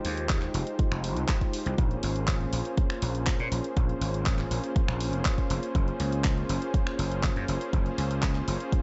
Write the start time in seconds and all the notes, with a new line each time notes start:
Already playing: G#3 D#4 F4 G4 C5
0.05 D#2, open hi-hat
0.17 G#3 D#4 F4 G4 C5, closed hi-hat
0.29 kick, clap, closed hi-hat
0.42 clap, closed hi-hat
0.54 F1 G#3 D#4 F4 G4 C5, open hi-hat
0.67 closed hi-hat
0.79 kick, closed hi-hat
0.92 F1, finger snap, closed hi-hat
1.03 G#3 D#4 F4 G4 C5, open hi-hat
1.16 C2, closed hi-hat
1.28 kick, clap, closed hi-hat
1.41 G#3 D#4 F4 G4 C5, kick, closed hi-hat
1.53 open hi-hat
1.66 C2, closed hi-hat
1.78 A#1 A#3 C#4 F4 G#4 C5, kick, closed hi-hat
1.91 closed hi-hat
2.03 G#1, open hi-hat
2.15 A#3 C#4 F4 G#4 C5, closed hi-hat
2.27 kick, clap, closed hi-hat
2.41 closed hi-hat
2.52 A#1 A#3 C#4 F4 G#4 C5, open hi-hat
2.65 closed hi-hat
2.77 kick, closed hi-hat
2.90 finger snap, closed hi-hat
3.02 A#1 A#3 C#4 F4 G#4 C5, open hi-hat
3.15 closed hi-hat
3.27 kick, clap, closed hi-hat
3.39 A#2 A#3 C#4 F4 G#4 C5, closed hi-hat
3.52 A#1, open hi-hat
3.64 closed hi-hat
3.76 A#1 A#3 C#4 F4 G#4 C5, kick, closed hi-hat
3.89 closed hi-hat
4.01 G#1, open hi-hat
4.14 A#3 C#4 F4 G#4 C5, closed hi-hat
4.26 kick, clap, closed hi-hat
4.39 clap, closed hi-hat
4.51 A#1 A#3 C#4 F4 G#4 C5, open hi-hat
4.64 closed hi-hat
4.76 kick, closed hi-hat
4.88 A#1, finger snap, closed hi-hat
5.00 A#3 C#4 F4 G#4 C5, open hi-hat
5.13 F1, closed hi-hat
5.25 kick, clap, closed hi-hat
5.37 A#3 C#4 F4 G#4 C5, kick, closed hi-hat
5.50 F1, open hi-hat
5.63 closed hi-hat
5.74 F#1 A#3 C#4 F4 G#4 C5, kick, closed hi-hat
5.88 closed hi-hat
6.00 C#2, open hi-hat
6.12 A#3 C#4 F4 G#4 C5, closed hi-hat
6.24 kick, clap, closed hi-hat
6.37 closed hi-hat
6.49 F#1 A#3 C#4 F4 G#4 C5, open hi-hat
6.62 closed hi-hat
6.74 kick, closed hi-hat
6.87 finger snap, closed hi-hat
6.99 F#1 A#3 C#4 F4 G#4 C5, open hi-hat
7.12 closed hi-hat
7.23 kick, clap, closed hi-hat
7.36 F#2 A#3 C#4 F4 G#4 C5, closed hi-hat
7.48 F#1, open hi-hat
7.61 closed hi-hat
7.73 F#1 A#3 C#4 F4 G#4 C5, kick, closed hi-hat
7.86 closed hi-hat
7.98 C#2, open hi-hat
8.10 A#3 C#4 F4 G#4 C5, closed hi-hat
8.22 kick, clap, closed hi-hat
8.35 clap, closed hi-hat
8.47 F#1 A#3 C#4 F4 G#4 C5, open hi-hat
8.60 closed hi-hat
8.72 kick, closed hi-hat